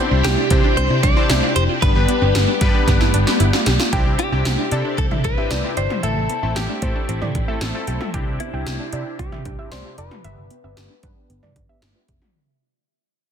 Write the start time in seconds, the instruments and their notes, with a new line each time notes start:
Already playing: string machine C3 C4 D4 E4 G4, synth keys C4 D4 E4 G4 C5
0.11 picked electric bass C2, synth arpeggio sound C4
0.24 clean electric guitar G4, snare, closed hi-hat
0.38 synth arpeggio sound D4
0.50 picked electric bass C3, synth keys C4 D4 E4 G4 C5, kick, closed hi-hat
0.64 synth arpeggio sound D4
0.77 picked electric bass C2, synth arpeggio sound C4, clean electric guitar C5, closed hi-hat
0.90 picked electric bass C3, synth arpeggio sound E4
1.03 picked electric bass C2, synth arpeggio sound D4, clean electric guitar D5, kick, closed hi-hat
1.17 synth keys C4 D4 E4 G4 C5
1.30 picked electric bass C2, synth arpeggio sound E4, snare, closed hi-hat
1.43 synth arpeggio sound F4
1.56 picked electric bass F1, synth arpeggio sound G4, clean electric guitar C5, closed hi-hat
1.69 synth arpeggio sound F4
1.82 picked electric bass G1, synth keys G3 B3 D4 G4 B4, string machine B3, clean electric guitar B4, kick, closed hi-hat
1.96 picked electric bass G1, synth keys G3 B3 D4 G4 B4
2.09 synth arpeggio sound B3, closed hi-hat
2.22 picked electric bass G1, synth arpeggio sound C4
2.35 picked electric bass G1, snare, closed hi-hat
2.48 synth arpeggio sound D4
2.61 picked electric bass G2, synth keys G3 B3 D4 G4 B4, kick, closed hi-hat
2.75 synth arpeggio sound D4
2.88 picked electric bass G1, synth arpeggio sound B3, kick, snare, closed hi-hat
3.01 picked electric bass G2, synth arpeggio sound E4, snare
3.14 picked electric bass G1, synth arpeggio sound D4, closed hi-hat
3.27 snare
3.40 picked electric bass G1, synth arpeggio sound E4, closed hi-hat
3.53 synth arpeggio sound F4, snare
3.66 picked electric bass B1, synth arpeggio sound G4, snare, closed hi-hat
3.80 synth arpeggio sound F4, snare
3.93 picked electric bass C2, string machine C3 C4 D4 E4 G4, synth keys C4 D4 E4 G4, synth pluck G5, kick, closed hi-hat
4.06 picked electric bass C2
4.19 synth arpeggio sound B3, clean electric guitar G4, closed hi-hat
4.32 picked electric bass C2, synth keys C4 D4 E4 G4, synth arpeggio sound C4, synth pluck G5
4.45 picked electric bass C2, snare, closed hi-hat
4.59 synth arpeggio sound D4
4.71 picked electric bass C3, synth keys C4 D4 E4 A4, synth pluck D5, closed hi-hat
4.85 synth arpeggio sound D4
4.98 picked electric bass C2, synth arpeggio sound C4, clean electric guitar A4, kick, closed hi-hat
5.11 picked electric bass C3, synth arpeggio sound E4, synth pluck E5, mid tom
5.24 picked electric bass C2, synth arpeggio sound D4, clean electric guitar B4, kick, closed hi-hat
5.37 synth keys C4 D4 E4 G4, synth pluck E5
5.51 picked electric bass C2, synth arpeggio sound E4, synth pluck D5, snare, closed hi-hat
5.64 synth keys C4 D4 E4 G4, synth arpeggio sound F4
5.77 picked electric bass G1, synth arpeggio sound G4, clean electric guitar C5, synth pluck D5, closed hi-hat
5.90 synth arpeggio sound F4, mid tom
6.03 picked electric bass A1, synth keys A3 C4 E4 A4, string machine A3 C4, clean electric guitar A4, synth pluck E5, closed hi-hat
6.17 picked electric bass A1
6.29 synth arpeggio sound B3, closed hi-hat
6.43 picked electric bass A1, synth keys A3 C4 E4 A4, synth arpeggio sound C4, synth pluck E5
6.56 picked electric bass A1, clean electric guitar G4, snare, closed hi-hat
6.69 synth arpeggio sound D4
6.82 picked electric bass A2, synth keys A3 C4 E4 A4, synth pluck C5, kick, closed hi-hat
6.96 synth arpeggio sound D4
7.09 picked electric bass A1, synth arpeggio sound C4, closed hi-hat
7.22 picked electric bass A2, synth arpeggio sound E4, synth pluck D5, mid tom
7.35 picked electric bass A1, synth arpeggio sound D4, kick, closed hi-hat
7.48 synth keys A3 C4 E4 A4, synth pluck E5
7.61 picked electric bass A1, synth arpeggio sound E4, snare, closed hi-hat
7.75 synth keys A3 C4 E4 A4, synth arpeggio sound F4
7.87 picked electric bass B1, synth arpeggio sound G4, closed hi-hat
8.01 synth arpeggio sound F4, mid tom
8.14 picked electric bass C2, string machine C3 D4 G4, synth keys C4 D4 E4 G4, synth pluck G5, kick, closed hi-hat
8.27 picked electric bass C2
8.40 synth arpeggio sound B3, clean electric guitar E4, closed hi-hat
8.53 picked electric bass C2, synth keys C4 D4 E4 G4, synth arpeggio sound C4, synth pluck G5
8.67 picked electric bass C2, snare, closed hi-hat
8.80 synth arpeggio sound D4
8.93 picked electric bass C3, synth keys C4 D4 E4 G4, synth pluck D5, closed hi-hat
9.06 synth arpeggio sound D4
9.19 picked electric bass C2, synth arpeggio sound C4, clean electric guitar G4, kick, closed hi-hat
9.32 picked electric bass C3, synth arpeggio sound E4, synth pluck E5, mid tom
9.45 picked electric bass C2, synth arpeggio sound D4, kick, closed hi-hat
9.59 synth keys C4 D4 E4 G4, synth pluck E5
9.72 picked electric bass C2, synth arpeggio sound E4, clean electric guitar C5, synth pluck D5, snare, closed hi-hat
9.85 synth keys C4 D4 E4 G4, synth arpeggio sound F4
9.98 picked electric bass F1, synth arpeggio sound G4, clean electric guitar B4, synth pluck D5, closed hi-hat
10.11 synth arpeggio sound F4, mid tom
10.24 picked electric bass G1, synth keys B3 D4 G4 B4, string machine B3, synth pluck E5, closed hi-hat
10.38 picked electric bass G1
10.51 synth arpeggio sound B3, closed hi-hat
10.64 picked electric bass G1, synth keys B3 D4 G4 B4, synth arpeggio sound C4, synth pluck E5
10.77 picked electric bass G1, snare, closed hi-hat
10.90 synth arpeggio sound D4
11.03 picked electric bass G2, synth keys B3 D4 G4 B4, synth pluck B4, kick, closed hi-hat
11.17 synth arpeggio sound D4
11.30 picked electric bass G1, synth arpeggio sound B3, closed hi-hat
11.43 picked electric bass G2, synth arpeggio sound E4, synth pluck D5, mid tom
11.56 picked electric bass G1, synth arpeggio sound D4, kick, closed hi-hat
11.69 synth keys B3 D4 G4 B4, synth pluck E5
11.82 picked electric bass G1, synth arpeggio sound E4, snare, closed hi-hat
11.95 synth keys B3 D4 G4 B4, synth arpeggio sound F4
12.08 picked electric bass F1, synth arpeggio sound G4, kick, closed hi-hat
12.22 synth arpeggio sound F4, mid tom